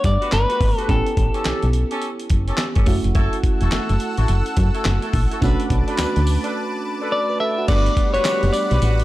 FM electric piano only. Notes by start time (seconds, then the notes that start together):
Already playing: A3 B3 D4 F#5
0.88 B3 C#4 E4 G4
2.86 A3 C#4 E4 F#4
5.41 A3 C#4 D4 F#4
7.30 B4
7.40 A4
7.58 F#4
7.68 A3 B3 D4 F#4